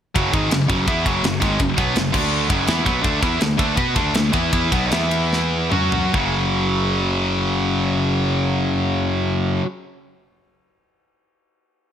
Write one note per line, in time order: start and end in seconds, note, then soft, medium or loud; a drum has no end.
0.15 0.32 F#1 medium
0.15 0.32 F#2 medium
0.15 0.33 C#3 loud
0.15 0.33 F#3 loud
0.15 kick loud
0.15 ride loud
0.33 0.50 G#1 medium
0.33 0.50 G#2 medium
0.33 0.51 D#3 medium
0.33 0.51 G#3 medium
0.33 kick loud
0.33 ride medium
0.51 0.69 F#1 medium
0.51 0.66 F#2 medium
0.51 0.66 C#3 medium
0.51 snare loud
0.51 ride loud
0.68 0.86 F#1 medium
0.68 0.87 F#2 medium
0.68 0.87 C#3 medium
0.68 0.87 F#3 loud
0.68 kick loud
0.68 ride medium
0.87 1.04 E2 medium
0.87 1.05 E3 loud
0.87 1.05 B3 loud
0.87 1.06 E4 loud
0.87 kick loud
0.87 ride loud
1.05 1.23 F#1 medium
1.05 1.22 F#2 medium
1.05 1.22 C#3 medium
1.05 1.24 F#3 loud
1.05 kick loud
1.05 ride medium
1.23 1.40 F#1 medium
1.23 1.38 F#2 medium
1.23 1.38 C#3 medium
1.23 snare loud
1.23 ride loud
1.40 1.59 G#1 medium
1.40 1.59 G#2 medium
1.40 1.59 D#3 medium
1.40 1.59 G#3 medium
1.40 kick loud
1.40 ride medium
1.59 1.77 F#1 medium
1.59 1.74 F#2 medium
1.59 1.74 C#3 medium
1.59 kick loud
1.59 ride loud
1.77 1.94 B1 medium
1.77 1.95 B2 medium
1.77 1.96 F#3 loud
1.77 1.96 B3 loud
1.77 kick loud
1.77 ride medium
1.95 2.12 F#1 medium
1.95 2.10 F#2 medium
1.95 2.11 C#3 medium
1.95 snare loud
1.95 ride loud
2.13 2.48 D2 medium
2.13 2.49 D3 medium
2.13 2.49 A3 medium
2.13 2.50 D4 medium
2.13 kick loud
2.13 crash loud
2.49 2.67 F#1 medium
2.49 2.67 F#2 medium
2.49 2.67 C#3 medium
2.49 2.67 F#3 medium
2.49 kick loud
2.49 ride medium
2.67 2.85 E2 loud
2.67 2.84 E3 medium
2.67 2.85 B3 medium
2.67 2.85 E4 medium
2.67 snare loud
2.67 ride loud
2.85 3.03 B1 medium
2.85 3.02 B2 medium
2.85 3.03 F#3 medium
2.85 3.03 B3 loud
2.85 kick loud
2.85 ride medium
3.02 3.21 D2 medium
3.02 3.21 D3 loud
3.02 3.21 A3 loud
3.02 3.22 D4 loud
3.02 kick loud
3.02 ride medium
3.21 3.39 E2 loud
3.21 3.39 E3 medium
3.21 3.39 B3 loud
3.21 3.40 E4 medium
3.21 kick loud
3.21 ride medium
3.40 3.58 D2 medium
3.40 3.55 D3 medium
3.40 3.55 A3 medium
3.40 snare loud
3.40 ride medium
3.57 3.76 D2 medium
3.57 3.76 D3 medium
3.57 3.75 A3 medium
3.57 3.76 D4 loud
3.57 kick loud
3.57 ride medium
3.75 3.95 B2 medium
3.75 3.94 B3 medium
3.75 3.95 F#4 medium
3.75 3.95 B4 loud
3.75 kick loud
3.75 ride loud
3.95 4.13 D2 medium
3.95 4.13 D3 medium
3.95 4.13 A3 loud
3.95 4.14 D4 loud
3.95 kick loud
3.95 ride medium
4.14 4.33 D2 medium
4.14 4.29 D3 medium
4.14 4.30 A3 medium
4.14 snare loud
4.14 ride loud
4.32 4.51 E2 medium
4.32 4.51 E3 medium
4.32 4.52 B3 medium
4.32 4.52 E4 medium
4.32 kick loud
4.32 ride medium
4.52 4.71 E2 medium
4.52 4.71 E3 loud
4.52 4.71 B3 loud
4.52 4.72 E4 loud
4.52 kick loud
4.52 ride loud
4.71 4.90 B1 medium
4.71 4.91 B2 medium
4.71 4.91 F#3 medium
4.71 4.91 B3 medium
4.71 kick loud
4.71 ride medium
4.91 5.68 E2 medium
4.91 5.70 E3 medium
4.91 5.71 B3 medium
4.91 5.72 E4 loud
4.91 snare loud
4.91 ride loud
5.11 ride medium
5.33 snare medium
5.70 6.11 F#2 loud
5.70 6.13 F#3 medium
5.70 6.13 C#4 medium
5.70 6.14 F#4 loud
5.70 mid tom loud
5.92 floor tom medium
6.12 9.59 F#1 medium
6.12 9.62 F#2 medium
6.12 9.65 C#3 loud
6.12 kick loud
6.16 9.66 F#3 loud